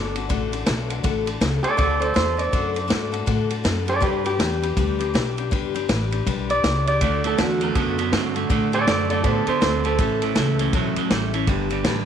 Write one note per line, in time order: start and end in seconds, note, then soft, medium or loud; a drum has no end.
0.00 0.29 G1 medium
0.00 0.16 A3 medium
0.00 0.16 D4 medium
0.00 0.15 F#4 medium
0.00 0.14 A4 medium
0.00 0.50 D5 medium
0.15 0.29 D4 soft
0.15 0.29 F#4 medium
0.15 0.30 A4 medium
0.15 ride medium
0.29 0.66 A1 medium
0.29 0.53 D3 medium
0.29 0.53 A3 medium
0.29 0.53 D4 loud
0.29 0.52 F#4 medium
0.29 0.51 A4 loud
0.29 kick loud
0.29 ride medium
0.52 0.65 D4 medium
0.52 0.66 F#4 medium
0.52 0.67 A4 medium
0.52 ride medium
0.66 1.03 B1 loud
0.66 0.89 A3 medium
0.66 0.90 D4 medium
0.66 0.90 F#4 medium
0.66 0.89 A4 medium
0.66 snare loud
0.66 ride medium
0.90 1.03 D4 soft
0.90 1.03 F#4 medium
0.90 1.04 A4 medium
0.90 ride medium
1.03 1.40 A1 medium
1.03 1.27 D3 medium
1.03 1.27 A3 medium
1.03 1.27 D4 loud
1.03 1.26 F#4 loud
1.03 1.25 A4 medium
1.03 kick loud
1.03 ride medium
1.26 1.40 D4 soft
1.26 1.41 F#4 medium
1.26 1.41 A4 medium
1.26 ride medium
1.41 1.63 C#2 loud
1.41 1.64 A3 medium
1.41 1.63 D4 medium
1.41 1.62 F#4 medium
1.41 1.61 A4 medium
1.41 snare loud
1.41 ride medium
1.63 1.77 D4 soft
1.63 1.77 F#4 soft
1.63 1.78 A4 medium
1.63 1.77 D5 loud
1.63 muted upright bass stroke soft
1.63 ride medium
1.77 2.15 D2 medium
1.77 2.01 D3 medium
1.77 2.01 A3 medium
1.77 2.01 D4 medium
1.77 1.99 F#4 medium
1.77 1.98 A4 medium
1.77 2.01 D5 loud
1.77 kick loud
1.77 ride medium
2.00 2.14 D4 soft
2.00 2.14 F#4 medium
2.00 2.15 A4 medium
2.00 2.15 C5 medium
2.00 ride medium
2.14 2.52 E2 loud
2.14 2.38 A3 medium
2.14 2.37 D4 medium
2.14 2.36 F#4 medium
2.14 2.36 A4 medium
2.14 2.38 C5 medium
2.14 snare loud
2.14 ride medium
2.37 2.52 D4 soft
2.37 2.53 F#4 soft
2.37 2.52 A4 medium
2.37 3.47 D5 loud
2.37 ride medium
2.52 2.89 F#2 medium
2.52 2.76 D3 medium
2.52 2.76 A3 medium
2.52 2.75 D4 medium
2.52 2.75 F#4 medium
2.52 2.73 A4 medium
2.52 kick loud
2.52 ride medium
2.74 2.87 D4 soft
2.74 2.88 F#4 soft
2.74 2.89 A4 medium
2.74 ride medium
2.88 3.26 G#2 medium
2.88 3.12 A3 medium
2.88 3.12 D4 medium
2.88 3.12 F#4 medium
2.88 3.11 A4 medium
2.88 snare loud
2.88 ride medium
3.12 3.26 D4 soft
3.12 3.26 F#4 medium
3.12 3.27 A4 medium
3.12 ride medium
3.26 3.64 A2 medium
3.26 3.50 D3 medium
3.26 3.51 A3 loud
3.26 3.50 D4 medium
3.26 3.50 F#4 loud
3.26 3.48 A4 loud
3.26 kick loud
3.26 ride medium
3.50 3.63 D4 medium
3.50 3.64 F#4 medium
3.50 3.65 A4 medium
3.50 ride medium
3.64 4.01 F#2 loud
3.64 3.87 A3 medium
3.64 3.87 D4 medium
3.64 3.86 F#4 medium
3.64 3.84 A4 medium
3.64 snare loud
3.64 ride loud
3.85 4.00 D4 soft
3.85 4.01 F#4 medium
3.85 4.01 A4 medium
3.85 ride medium
3.90 4.03 D5 loud
4.01 4.39 G2 medium
4.01 4.25 G3 medium
4.01 4.25 D4 medium
4.01 4.24 G4 medium
4.01 4.23 B4 medium
4.01 kick loud
4.01 ride medium
4.24 4.39 D4 soft
4.24 4.39 G4 soft
4.24 4.39 B4 medium
4.24 ride medium
4.39 4.76 E2 medium
4.39 4.63 G3 medium
4.39 4.63 D4 medium
4.39 4.62 G4 medium
4.39 4.61 B4 medium
4.39 snare loud
4.39 ride medium
4.62 4.77 D4 soft
4.62 4.77 G4 soft
4.62 4.77 B4 medium
4.62 ride medium
4.77 5.13 D2 medium
4.77 5.00 G3 loud
4.77 5.00 D4 medium
4.77 4.99 G4 loud
4.77 4.97 B4 loud
4.77 kick loud
4.77 ride medium
4.99 5.13 D4 medium
4.99 5.14 G4 medium
4.99 5.14 B4 medium
4.99 ride medium
5.14 5.51 B1 loud
5.14 5.37 G3 medium
5.14 5.38 D4 medium
5.14 5.37 G4 medium
5.14 5.36 B4 medium
5.14 snare loud
5.14 ride medium
5.37 5.50 D4 soft
5.37 5.51 G4 medium
5.37 5.51 B4 medium
5.37 ride medium
5.51 5.88 G1 medium
5.51 5.75 G3 medium
5.51 5.74 D4 medium
5.51 5.74 G4 medium
5.51 5.73 B4 loud
5.51 kick loud
5.51 ride medium
5.74 5.88 D4 soft
5.74 5.89 G4 medium
5.74 5.89 B4 medium
5.74 ride medium
5.89 6.25 A1 medium
5.89 6.12 G3 medium
5.89 6.12 D4 medium
5.89 6.11 G4 medium
5.89 6.10 B4 medium
5.89 snare loud
5.89 ride medium
6.11 6.26 D4 soft
6.11 6.27 G4 medium
6.11 6.26 B4 medium
6.11 ride medium
6.26 6.63 B1 medium
6.26 6.50 G3 loud
6.26 6.50 D4 loud
6.26 6.49 G4 medium
6.26 6.48 B4 loud
6.26 kick loud
6.26 ride medium
6.49 6.64 D4 soft
6.49 6.64 G4 medium
6.49 6.64 B4 medium
6.49 6.86 D5 loud
6.49 ride medium
6.64 7.00 C#2 loud
6.64 6.87 G3 medium
6.64 6.87 D4 medium
6.64 6.88 G4 medium
6.64 6.87 B4 medium
6.64 snare loud
6.64 ride medium
6.87 7.01 D4 soft
6.87 7.02 G4 soft
6.87 7.02 B4 medium
6.87 7.24 D5 medium
6.87 ride medium
7.01 7.37 D2 medium
7.01 7.24 D3 medium
7.01 7.22 D3 medium
7.01 7.24 A3 medium
7.01 7.22 A3 loud
7.01 7.24 D4 medium
7.01 7.25 F#4 medium
7.01 7.23 A4 medium
7.01 kick loud
7.01 ride medium
7.24 7.37 D3 medium
7.24 7.37 A3 medium
7.24 7.37 D4 soft
7.24 7.38 F#4 soft
7.24 7.38 A4 medium
7.24 ride medium
7.38 7.75 E2 medium
7.38 7.59 D3 medium
7.38 7.61 A3 medium
7.38 7.59 A3 medium
7.38 7.61 D4 medium
7.38 7.60 F#4 medium
7.38 7.59 A4 medium
7.38 snare loud
7.38 ride medium
7.60 7.74 D3 medium
7.60 7.75 A3 medium
7.60 7.75 D4 soft
7.60 7.75 F#4 soft
7.60 7.75 A4 medium
7.60 ride medium
7.75 8.12 F#2 medium
7.75 7.98 D3 medium
7.75 7.96 D3 medium
7.75 7.99 A3 medium
7.75 7.97 B3 loud
7.75 7.99 D4 medium
7.75 7.98 F#4 medium
7.75 7.97 A4 medium
7.75 kick loud
7.75 ride medium
7.98 8.12 D3 medium
7.98 8.12 B3 medium
7.98 8.12 D4 soft
7.98 8.12 F#4 medium
7.98 8.13 A4 medium
7.98 ride medium
8.12 8.49 G2 loud
8.12 8.34 D3 medium
8.12 8.36 A3 medium
8.12 8.34 C4 loud
8.12 8.36 D4 medium
8.12 8.34 F#4 medium
8.12 8.33 A4 medium
8.12 snare loud
8.12 ride medium
8.34 8.49 D3 medium
8.34 8.49 A3 medium
8.34 8.49 D4 soft
8.34 8.50 F#4 medium
8.34 8.50 A4 medium
8.34 ride medium
8.49 8.86 A2 medium
8.49 8.73 D3 medium
8.49 8.71 D3 medium
8.49 8.73 A3 medium
8.49 8.71 A3 medium
8.49 8.73 D4 loud
8.49 8.72 F#4 medium
8.49 8.71 A4 loud
8.49 kick loud
8.49 ride medium
8.72 8.87 D3 medium
8.72 8.87 A3 medium
8.72 8.86 D4 soft
8.72 8.87 F#4 soft
8.72 8.87 A4 medium
8.72 8.87 D5 loud
8.72 ride medium
8.87 9.23 F#2 medium
8.87 9.08 D3 medium
8.87 9.10 A3 medium
8.87 9.09 A3 medium
8.87 9.10 D4 medium
8.87 9.10 F#4 medium
8.87 9.09 A4 medium
8.87 9.09 D5 medium
8.87 snare loud
8.87 ride medium
9.10 9.23 D3 medium
9.10 9.24 A3 medium
9.10 9.23 D4 soft
9.10 9.24 F#4 soft
9.10 9.24 A4 soft
9.10 9.25 D5 medium
9.10 ride medium
9.24 9.46 A2 medium
9.24 9.47 D3 medium
9.24 9.45 D3 medium
9.24 9.47 A3 medium
9.24 9.45 B3 medium
9.24 9.47 D4 medium
9.24 9.47 F#4 medium
9.24 9.46 A4 medium
9.24 9.47 C5 medium
9.24 kick loud
9.24 ride medium
9.47 9.60 D3 medium
9.47 9.61 B3 medium
9.47 9.60 D4 soft
9.47 9.62 F#4 soft
9.47 9.62 A4 medium
9.47 9.62 C5 medium
9.47 muted upright bass stroke soft
9.47 ride medium
9.61 9.98 D2 loud
9.61 9.82 D3 medium
9.61 9.84 A3 medium
9.61 9.83 C4 loud
9.61 9.85 D4 medium
9.61 9.84 F#4 medium
9.61 9.83 A4 medium
9.61 9.85 C5 medium
9.61 snare loud
9.61 ride medium
9.84 9.98 D3 medium
9.84 9.98 A3 medium
9.84 9.99 D4 soft
9.84 9.99 F#4 soft
9.84 9.99 A4 medium
9.84 ride medium
9.98 10.35 A1 medium
9.98 10.22 A2 medium
9.98 10.20 A2 medium
9.98 10.22 E3 medium
9.98 10.20 E3 medium
9.98 10.22 A3 medium
9.98 10.22 C#4 medium
9.98 10.22 E4 medium
9.98 10.20 A4 medium
9.98 kick loud
9.98 ride medium
10.22 10.36 A2 medium
10.22 10.36 E3 medium
10.22 10.34 A3 soft
10.22 10.35 C#4 soft
10.22 10.35 E4 soft
10.22 10.36 A4 soft
10.22 ride medium
10.35 10.72 C#2 medium
10.35 10.58 A2 medium
10.35 10.57 E3 loud
10.35 10.59 A3 medium
10.35 10.59 C#4 medium
10.35 10.59 E4 medium
10.35 10.58 A4 medium
10.35 snare loud
10.35 ride medium
10.59 10.73 A2 medium
10.59 10.73 E3 medium
10.59 10.73 A3 medium
10.59 10.73 C#4 medium
10.59 10.74 E4 medium
10.59 10.73 A4 medium
10.59 ride medium
10.73 10.94 B1 medium
10.73 10.96 A2 medium
10.73 10.95 A2 medium
10.73 10.97 E3 medium
10.73 10.95 F#3 medium
10.73 10.96 A3 medium
10.73 10.97 C#4 medium
10.73 10.97 E4 medium
10.73 10.96 A4 loud
10.73 kick loud
10.73 ride medium
10.96 11.10 A2 medium
10.96 11.10 F#3 medium
10.96 11.10 A3 medium
10.96 11.11 C#4 medium
10.96 11.11 E4 medium
10.96 11.11 A4 medium
10.96 muted upright bass stroke soft
10.96 ride medium
11.10 11.47 A1 loud
11.10 11.31 A2 medium
11.10 11.32 G3 medium
11.10 11.34 A3 medium
11.10 11.33 C#4 medium
11.10 11.33 E4 medium
11.10 11.32 A4 medium
11.10 snare loud
11.10 ride medium
11.33 11.47 A2 medium
11.33 11.47 E3 medium
11.33 11.47 A3 medium
11.33 11.48 C#4 medium
11.33 11.48 E4 medium
11.33 11.48 A4 medium
11.33 ride medium
11.47 11.84 G1 medium
11.47 11.69 G2 medium
11.47 11.69 D3 medium
11.47 11.70 G3 medium
11.47 11.71 D4 medium
11.47 11.70 G4 loud
11.47 11.69 B4 loud
11.47 kick loud
11.47 ride medium
11.70 11.84 G2 medium
11.70 11.84 D3 medium
11.70 11.85 D4 soft
11.70 11.85 G4 medium
11.70 11.84 B4 medium
11.70 ride medium
11.84 12.05 A1 loud
11.84 12.05 G2 medium
11.84 12.05 D3 medium
11.84 12.05 G3 medium
11.84 12.05 D4 medium
11.84 12.05 G4 medium
11.84 12.05 B4 medium
11.84 snare loud
11.84 ride medium